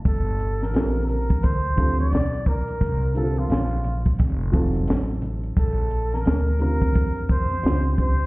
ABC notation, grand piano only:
X:1
M:4/4
L:1/8
Q:"Swing 16ths" 1/4=87
K:Gm
V:1 name="Grand piano"
z2 [D,G,CFA] z2 [D,G,CFA] z2 | z [D,G,CFAB] z3 [_G,CEFA]3 | z3 [D,G,CFB]3 [G,CDFG] z |]